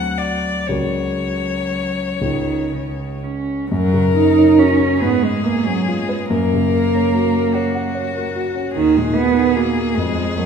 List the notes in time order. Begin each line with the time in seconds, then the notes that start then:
Already playing: D2 D3 F#3 A3 C4 F#4 F#5
0.18 D5
0.67 C#2 C#3 F#3 A#3 C#4 C#5
0.71 F#4
2.21 C#2 C#3 D#3 G#3 C#4 F4
2.72 C#3
3.24 C#4
3.71 F#2 F#3 A#4
3.94 C#3
4.16 A#3 D#4
4.37 C#4
4.58 C#4 F#4
4.80 A#4
5.01 G#2 B3 G#4
5.22 G#3
5.44 A#3 B3
5.65 F#3 C#4
5.86 G#3 F4
6.09 B4
6.29 F#2 A#3 A#4
6.54 C#3
6.73 A#3
6.95 C#4
7.14 F#4
7.54 F#4 C#5
7.75 F#5
7.95 C#5
8.15 A#4
8.35 F#4
8.55 C#4
8.75 D#2 D#3 G#4
8.96 A#2 G#3
9.15 A#3 B3
9.35 D#4
9.55 A#3 F#4
9.77 A#4
9.96 F2 G#3
10.17 F3
10.37 F#3 A#3